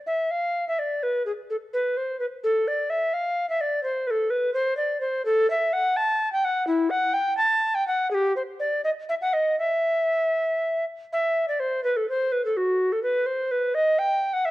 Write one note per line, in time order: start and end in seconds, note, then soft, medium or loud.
0.07 0.33 E5 medium
0.31 0.67 F5 medium
0.68 0.81 E5 soft
0.79 1.05 D5 soft
1.03 1.25 B4 medium
1.26 1.32 G#4 medium
1.50 1.56 A4 soft
1.73 1.98 B4 medium
1.97 2.19 C5 soft
2.20 2.26 B4 medium
2.44 2.69 A4 medium
2.68 2.91 D5 medium
2.90 3.15 E5 medium
3.14 3.49 F5 medium
3.49 3.62 E5 medium
3.61 3.83 D5 medium
3.83 4.08 C5 medium
4.07 4.32 A4 medium
4.07 4.11 B4 medium
4.30 4.53 B4 medium
4.54 4.76 C5 medium
4.77 5.00 D5 medium
5.01 5.25 C5 medium
5.26 5.50 A4 medium
5.50 5.75 E5 medium
5.73 5.98 F#5 medium
5.97 6.32 A5 medium
6.32 6.46 G5 medium
6.45 6.66 F#5 medium
6.67 6.92 E4 medium
6.90 7.15 F#5 medium
7.13 7.37 G5 medium
7.37 7.76 A5 medium
7.75 7.87 G5 medium
7.88 8.10 F#5 medium
8.11 8.36 G4 medium
8.11 8.16 G#4 medium
8.36 8.42 C5 medium
8.60 8.84 D5 medium
8.84 8.90 D#5 medium
9.09 9.15 E5 medium
9.22 9.35 F#5 medium
9.34 9.59 D#5 medium
9.59 10.85 E5 medium
11.13 11.46 E5 medium
11.48 11.61 D5 medium
11.60 11.83 C5 medium
11.84 11.98 B4 medium
11.96 12.08 A4 medium
12.09 12.33 C5 medium
12.32 12.44 B4 medium
12.45 12.58 A4 medium
12.56 12.93 F#4 medium
12.92 13.02 A4 medium
13.03 13.28 B4 medium
13.26 13.53 C5 medium
13.51 13.76 B4 medium
13.74 14.00 D#5 medium
13.99 14.35 G5 medium
14.33 14.47 F#5 medium
14.46 14.51 E5 medium